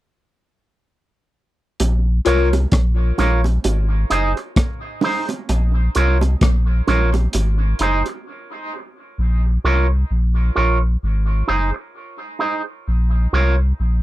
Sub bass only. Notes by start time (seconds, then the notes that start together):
1.80 A#1
2.26 C2
2.72 A#1
3.19 A#1
3.65 G#1
4.11 F#1
5.49 A#1
5.96 C2
6.42 A#1
6.88 A#1
7.34 G#1
7.80 F#1
9.18 A#1
9.64 C2
10.11 A#1
10.57 A#1
11.03 G#1
11.49 F#1
12.88 A#1
13.33 C2
13.80 A#1